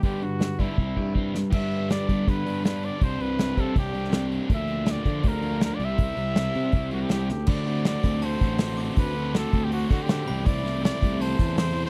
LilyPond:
<<
  \new Staff \with { instrumentName = "Glockenspiel" } { \time 4/4 \key d \mixolydian \tempo 4 = 161 r1 | r1 | r1 | r1 |
r1 | b''2 a''4 c'''8 d'''8~ | d'''2.~ d'''8 b''8~ | b''2 a''4 c'''4 | }
  \new Staff \with { instrumentName = "Trumpet" } { \time 4/4 \key d \mixolydian g'8 fis'4 e'2 r8 | e''4 d''4 b'4 b'8 d''8 | c''8 b'4 a'8 g'4. r8 | e''4 d''4 bes'4 bes'16 d''16 e''8~ |
e''2~ e''8 fis'16 g'16 g'8 g'8 | d''4 d''4 c''4. r8 | b'4 a'8. g'16 fis'8 fis'16 g'16 g'4 | d''4 d''4 c''4 c''8. c''16 | }
  \new Staff \with { instrumentName = "Overdriven electric guitar" } { \time 4/4 \key d \mixolydian <g, d g>8 <g, d>8 <g, d>8 <g, d g>8 <c g c'>8 <c g>8 <c g c'>8 <c g>8 | <g, d g b d'>4. <g, d g b d'>4. <g, d g b d'>4 | <c g c' d'>4. <c g c' d'>4. <c g c' d'>4 | <d f bes d'>4. <d f bes d'>4. <d f bes d'>8 <c g c' e'>8~ |
<c g c' e'>4 <c g c' e'>4. <c g c' e'>4 r8 | <d a c' fis'>8 <d a c' fis'>8 <d a c' fis'>8 <d a c' fis'>8 <d a c' fis'>8 <d a c' fis'>8 <d a c' fis'>8 <d a c' fis'>8 | <d a c' fis'>8 <d a c' fis'>8 <d a c' fis'>8 <d a c' fis'>8 <d a c' fis'>8 <d a c' fis'>8 <d a c' fis'>8 <c e a c' e'>8 | <c e a c' e'>8 <c e a c' e'>8 <c e a c' e'>8 <c e a c' e'>8 <c e a c' e'>8 <c e a c' e'>8 <c e a c' e'>8 <c e a c' e'>8 | }
  \new Staff \with { instrumentName = "Overdriven electric guitar" } { \time 4/4 \key d \mixolydian <d g b d'>8 r4 <d g b d'>8 r8 <c g c' e'>8 r4 | <g, d g b d'>2~ <g, d g b d'>8 <g, d g b d'>8 <g, d g b d'>4 | <c g c' d'>2~ <c g c' d'>8 <c g c' d'>8 <c g c' d'>4 | <d f bes d'>2~ <d f bes d'>8 <d f bes d'>8 <d f bes d'>8 <c g c' e'>8~ |
<c g c' e'>2 <c g c' e'>8 <c g c' e'>4 r8 | <d a c' fis'>8 <d a c' fis'>8 <d a c' fis'>8 <d a c' fis'>8 <d a c' fis'>8 <d a c' fis'>8 <d a c' fis'>8 <d a c' fis'>8 | <d a c' fis'>8 <d a c' fis'>8 <d a c' fis'>8 <d a c' fis'>8 <d a c' fis'>8 <d a c' fis'>8 <d a c' fis'>8 <c e a c' e'>8 | <c e a c' e'>8 <c e a c' e'>8 <c e a c' e'>8 <c e a c' e'>8 <c e a c' e'>8 <c e a c' e'>8 <c e a c' e'>8 <c e a c' e'>8 | }
  \new Staff \with { instrumentName = "Picked electric bass" } { \clef bass \time 4/4 \key d \mixolydian g,4. g,16 r16 c,8 g,4. | g,4. g8 g,2 | c,8 c,4 c8 c,2 | d,4. d8 d,4. c,8~ |
c,8 c,4 c8 c,4 c,8 d,8 | d,4. d,4 a,,4. | d,4. d,4 d4 c,8~ | c,4. c,4 e,4. | }
  \new DrumStaff \with { instrumentName = "Drums" } \drummode { \time 4/4 <hho bd>8 hho8 <hho sn>8 <hho bd>8 bd8 bd8 bd8 sn8 | <cymc bd>8 hho8 <hho sn>8 <hho bd>8 <hho bd>8 hho8 <hho sn>8 hho8 | <hho bd>8 hho8 <hho sn>8 <hho bd>8 <hho bd>8 hho16 sn16 <hho sn>8 hho8 | <hho bd>8 hho8 <hho sn>8 <hho bd>8 <hho bd>8 hho8 <hho sn>8 hho8 |
<hho bd>8 hho8 <hho sn>8 hho8 <hho bd>8 hho8 <hho sn>8 sn8 | <cymc bd>8 hho8 <hho sn>8 <hho bd>8 hho8 <hho bd>8 <hho sn>8 hho8 | <hho bd>8 hho8 <hho sn>8 <hho bd>8 hho8 <hho bd>8 <hho sn>8 hho8 | <hho bd>8 <hho sn>8 <hho sn>8 <hho bd>8 hho8 <hho bd>8 <hho sn>8 hho16 sn16 | }
>>